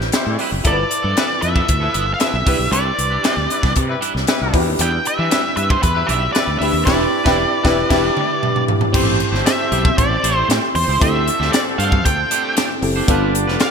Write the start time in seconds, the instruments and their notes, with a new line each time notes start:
Already playing: fm electric piano B3 C4 E4 G4 B4
0.00 muted clean electric guitar stroke, snare
0.12 horn section G3 E4 C5, snare, closed hi-hat
0.26 fretless electric bass A2, muted clean electric guitar stroke
0.39 clean electric guitar G3 C4 E4 B4, open hi-hat
0.52 fretless electric bass F#1, muted clean electric guitar stroke
0.64 fretless electric bass G1, clean electric guitar F3 B3 E4 A4, fm electric piano E4 F4 A4 A#4, lead electric guitar D5, kick, closed hi-hat
0.72 fm electric piano B4
0.78 muted clean electric guitar stroke
0.91 muted clean electric guitar stroke, closed hi-hat
1.03 fretless electric bass G2, clean electric guitar F3 B3 E4 A4
1.16 clean electric guitar F3 B3 E4 A4, horn section F3 E4 B4, snare, closed hi-hat
1.29 muted clean electric guitar stroke
1.41 fretless electric bass F2, horn section F3 E4 B4, lead electric guitar E5, muted clean electric guitar stroke, closed hi-hat
1.55 clean electric guitar F3 B3 E4 A4, kick
1.68 fretless electric bass D2, kick, closed hi-hat
1.80 horn section F3 E4 B4, clean electric guitar F3 B3 E4 A4
1.94 fretless electric bass G1, clean electric guitar F3 B3 E4 B4, closed hi-hat
2.07 muted clean electric guitar stroke
2.14 lead electric guitar F5
2.19 horn section F3 E4 B4, lead electric guitar E5, snare, closed hi-hat
2.33 fretless electric bass B1, muted clean electric guitar stroke
2.46 fretless electric bass C2, clean electric guitar G3 D4 E4 B4, fm electric piano D4 E4 G4 B4, kick, open hi-hat
2.59 fretless electric bass B1, muted clean electric guitar stroke
2.72 fretless electric bass C2, clean electric guitar G3 D4 E4 B4, lead electric guitar D5, closed hi-hat
2.85 muted clean electric guitar stroke
2.98 fretless electric bass C2, muted clean electric guitar stroke, closed hi-hat
3.10 clean electric guitar G3 D4 E4 B4
3.23 clean electric guitar G3 D4 E4 C5, horn section G3 E4 B4, snare, closed hi-hat
3.37 fretless electric bass D2, muted clean electric guitar stroke
3.49 horn section G3 E4 B4, muted clean electric guitar stroke, closed hi-hat
3.62 fretless electric bass C2, clean electric guitar G3 D4 E4 B4, kick, snare
3.75 fretless electric bass C3, muted clean electric guitar stroke, kick, closed hi-hat
3.87 horn section G3 E4 B4, muted clean electric guitar stroke
4.01 clean electric guitar G3 D4 E4 B4, closed hi-hat
4.14 fretless electric bass C2, muted clean electric guitar stroke, snare
4.27 horn section G3 E4 B4, muted clean electric guitar stroke, snare, closed hi-hat
4.40 fretless electric bass C2, muted clean electric guitar stroke
4.53 fretless electric bass E2, fm electric piano D4 E4 F#4 B4, kick, open hi-hat
4.60 fm electric piano G4
4.66 fretless electric bass D#2, muted clean electric guitar stroke
4.79 fretless electric bass E2, clean electric guitar G3 D4 E4 B4, lead electric guitar G5, closed hi-hat
4.92 muted clean electric guitar stroke
5.05 lead electric guitar E5, muted clean electric guitar stroke, closed hi-hat
5.17 fretless electric bass E3, clean electric guitar G3 D4 E4 B4
5.30 clean electric guitar G3 D4 E4 B4, horn section G3 E4 B4, snare, closed hi-hat
5.44 muted clean electric guitar stroke
5.56 fretless electric bass G2, horn section G3 E4 B4, lead electric guitar E5, muted clean electric guitar stroke, closed hi-hat
5.69 clean electric guitar G3 D4 E4 B4, lead electric guitar C5, kick
5.82 fretless electric bass E2, lead electric guitar B4, muted clean electric guitar stroke, kick, closed hi-hat
5.95 horn section G3 E4 B4, clean electric guitar G3 D4 E4 B4
6.07 fretless electric bass B1, clean electric guitar G3 D4 E4 D5, lead electric guitar E5, closed hi-hat
6.21 muted clean electric guitar stroke
6.33 horn section G3 E4 B4, lead electric guitar D5, snare, closed hi-hat
6.46 fretless electric bass D2, muted clean electric guitar stroke
6.59 fretless electric bass D2, clean electric guitar G3 D4 E4 B4, fm electric piano D4 E4 G4 B4, lead electric guitar E5, open hi-hat
6.73 fretless electric bass D#2, muted clean electric guitar stroke
6.85 fretless electric bass E1, clean electric guitar G3 D4 E4 B4, horn section G3 E4 B4, fm electric piano D4 E4 G4 B4, lead electric guitar D5, kick, snare, crash
7.24 fretless electric bass E1, horn section G3 E4 B4, clean electric guitar G3 D4 E4 B4, fm electric piano D4 E4 G4 B4, kick, snare
7.63 fretless electric bass E1, horn section G3 E4 B4, clean electric guitar G3 D4 E4 B4, fm electric piano D4 E4 G4 B4, kick, snare
7.89 fretless electric bass E1, clean electric guitar G3 D4 E4 B4, horn section G3 E4 B4, fm electric piano D4 E4 G4 B4, kick, snare, crash
8.17 mid tom
8.43 mid tom
8.56 mid tom
8.68 floor tom
8.81 floor tom
8.92 fretless electric bass A1, clean electric guitar A3 E4 G4 C5, horn section A3 G4 C5, fm electric piano C4 E4 G4 C5, kick, crash
9.20 muted clean electric guitar stroke, closed hi-hat
9.32 fretless electric bass G1, clean electric guitar A3 E4 G4 C5, snare
9.46 lead electric guitar E5, snare, closed hi-hat
9.58 muted clean electric guitar stroke
9.71 fretless electric bass B1, clean electric guitar A3 E4 G4 C5, closed hi-hat
9.85 muted clean electric guitar stroke, kick
9.97 fretless electric bass A1, lead electric guitar D5, muted clean electric guitar stroke, kick, closed hi-hat
10.10 muted clean electric guitar stroke
10.23 fretless electric bass A1, clean electric guitar A3 E4 G4 C5, closed hi-hat
10.36 clean electric guitar A3 E4 G4 C5
10.48 fretless electric bass A2, clean electric guitar A3 E4 G4 C5, snare, closed hi-hat
10.63 muted clean electric guitar stroke
10.75 fretless electric bass E2, lead electric guitar C5, muted clean electric guitar stroke, open hi-hat
10.88 fretless electric bass C#2, clean electric guitar A3 E4 G4 C5
11.00 fretless electric bass D2, horn section D3 C4 A4, clean electric guitar A3 D4 G4 C5, fm electric piano C4 E4 G4 A4, lead electric guitar E5, kick, closed hi-hat
11.27 muted clean electric guitar stroke, closed hi-hat
11.40 fretless electric bass D2, clean electric guitar A3 D4 G4 C5, snare
11.53 lead electric guitar D5, snare, closed hi-hat
11.65 muted clean electric guitar stroke
11.78 fretless electric bass G2, clean electric guitar A3 D4 G4 C5, lead electric guitar F5, closed hi-hat
11.91 muted clean electric guitar stroke, kick
12.04 fretless electric bass D2, lead electric guitar G5, muted clean electric guitar stroke, kick, closed hi-hat
12.17 muted clean electric guitar stroke
12.30 clean electric guitar A3 D4 G4 C5, closed hi-hat
12.44 clean electric guitar A3 D4 G4 C5
12.56 clean electric guitar A3 D4 G4 D5, snare, closed hi-hat
12.70 muted clean electric guitar stroke
12.81 fretless electric bass F#1, fm electric piano C4 E4 G4 A4, muted clean electric guitar stroke, open hi-hat
12.96 clean electric guitar A3 D4 G4 C5
13.07 fretless electric bass G1, clean electric guitar G3 D4 F4 B4, fm electric piano B3 D4 F4 A4, horn section B3 G4 D5, kick, closed hi-hat
13.34 muted clean electric guitar stroke, closed hi-hat
13.46 fretless electric bass F1, clean electric guitar G3 D4 F4 B4, snare
13.60 lead electric guitar F5, snare, closed hi-hat